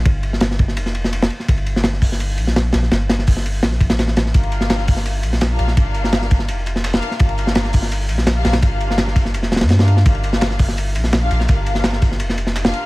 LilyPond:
<<
  \new Staff \with { instrumentName = "String section" } { \time 4/4 \key g \minor \tempo 4 = 168 r1 | r1 | r1 | <d' f' g' bes' f''>2~ <d' f' g' bes' f''>8 r8. <d' f' g' bes' f''>8. |
<d' f' g' bes' f''>2~ <d' f' g' bes' f''>8 r8. <d' f' g' bes' f''>8. | <d' f' g' bes' f''>2~ <d' f' g' bes' f''>8 r8. <d' f' g' bes' f''>8. | <d' f' g' bes' f''>2~ <d' f' g' bes' f''>8 r8. <d' f' g' bes' f''>8. | <d' f' g' bes' f''>2~ <d' f' g' bes' f''>8 r8. <d' f' g' bes' f''>8. |
<d' f' g' bes' f''>2~ <d' f' g' bes' f''>8 r8. <d' f' g' bes' f''>8. | }
  \new Staff \with { instrumentName = "Sub bass" } { \clef bass \time 4/4 \key g \minor g,,2 f,,4. r8 | g,,2~ g,,8 bes,,4 bes,,8 | g,,2 bes,,8. a,,4~ a,,16 | g,,2~ g,,8 bes,,4 bes,,8 |
g,,2 f,,4. r8 | g,,2~ g,,8 bes,,4 bes,,8 | g,,2 f,,8 d,,16 g,4~ g,16 | g,,2~ g,,8 bes,,4 bes,,8 |
g,,2 f,,4. r8 | }
  \new DrumStaff \with { instrumentName = "Drums" } \drummode { \time 4/4 <bd cymr>8 cymr16 sn16 <cymr sn>16 sn16 <bd cymr>16 sn16 cymr16 sn16 cymr16 sn16 cymr16 sn16 cymr16 sn16 | <bd cymr>16 cymr16 cymr16 sn16 <cymr sn>16 sn16 <hho bd>16 sn16 cymr8 cymr16 sn16 <cymr sn>8 <cymr sn>16 sn16 | <cymr sn>8 <cymr sn>16 sn16 <hho bd>16 sn16 cymr8 <cymr sn>16 sn16 <bd cymr>16 <cymr sn>16 <cymr sn>16 sn16 <cymr sn>16 sn16 | <hh bd cymr>16 cymr16 <hh cymr>16 sn16 <hh cymr sn>16 <hh sn>16 <hh hho bd>16 <hh sn>16 <hh cymr>8 <hh cymr>16 sn16 <hh cymr sn>8 <hh cymr sn>16 sn16 |
<hh bd cymr>8 <hh cymr>16 sn16 <hh cymr sn>16 sn16 <hho bd cymr>16 sn16 <hh cymr>8 <hh cymr>16 sn16 <hh cymr sn>16 <hh sn>16 <hh cymr>16 sn16 | <hh bd cymr>16 cymr16 <hh cymr>16 sn16 <hh cymr sn>16 <hh sn>16 <hh hho bd>16 <hh sn>16 <hh cymr>8 <hh cymr>16 sn16 <hh cymr sn>8 <hh cymr sn>16 <cymr sn>16 | <hh bd cymr>8 <hh cymr>16 sn16 <hh cymr sn>16 sn16 <hho bd cymr>16 sn16 <hh cymr>16 sn16 <hh cymr sn>32 <cymr sn>32 <cymr sn>16 <hh cymr sn>16 sn16 <hh cymr>16 sn16 | <hh bd cymr>16 cymr16 <hh cymr>16 sn16 <hh cymr sn>16 <hh sn>16 <hh hho bd>16 <hh sn>16 <hh cymr>8 <hh cymr>16 sn16 <hh cymr sn>8 <hh cymr sn>16 sn16 |
<hh bd cymr>8 <hh cymr>16 sn16 <hh cymr sn>16 sn16 <hho bd cymr>16 sn16 <hh cymr>16 sn16 <hh cymr>16 sn16 <hh cymr sn>16 <hh sn>16 <hh cymr>8 | }
>>